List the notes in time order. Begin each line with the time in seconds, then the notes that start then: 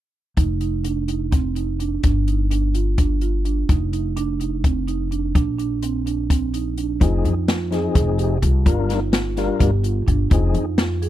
0.37 F1 D#4, kick, closed hi-hat
0.61 D#4, closed hi-hat
0.84 D4, closed hi-hat
1.08 D#4, closed hi-hat
1.32 C4, kick, closed hi-hat
1.55 D#4, closed hi-hat
1.80 D4, closed hi-hat
2.03 G1 D4, kick, closed hi-hat
2.28 D#4, closed hi-hat
2.50 D4, closed hi-hat
2.75 F4, closed hi-hat
2.98 D4, kick, closed hi-hat
3.21 F4, closed hi-hat
3.45 D4, closed hi-hat
3.69 F1 D#4, kick, closed hi-hat
3.93 D#4, closed hi-hat
4.17 D4, closed hi-hat
4.40 D#4, closed hi-hat
4.64 C4, kick, closed hi-hat
4.87 D#4, closed hi-hat
5.11 D4, closed hi-hat
5.35 A#1 D4, kick, closed hi-hat
5.58 D4, closed hi-hat
5.83 C4, closed hi-hat
6.06 D4, closed hi-hat
6.30 C4, kick, closed hi-hat
6.54 D#4, closed hi-hat
6.78 D4, closed hi-hat
7.00 F1 F3 C4 D#4 F4 G#4, kick, closed hi-hat
7.25 F2 D#4, closed hi-hat
7.48 F4, snare, closed hi-hat
7.71 F3 C4 D#4 G#4, snare, closed hi-hat
7.95 F1 G#4, kick, closed hi-hat
8.18 G4, closed hi-hat
8.42 C2 F4, kick, closed hi-hat
8.66 G1 G3 D4 F4 A#4, kick, closed hi-hat
8.89 D#4, snare, closed hi-hat
9.12 F4, snare, closed hi-hat
9.37 G3 D4 F4 G4 A#4, snare, closed hi-hat
9.60 G1 G4, kick, closed hi-hat
9.84 F4, closed hi-hat
10.07 G1 D4, kick, closed hi-hat
10.30 F1 F3 C4 D#4 F4 G#4, kick, closed hi-hat
10.54 F2 D#4, closed hi-hat
10.78 F4, snare, closed hi-hat
11.02 G#4, closed hi-hat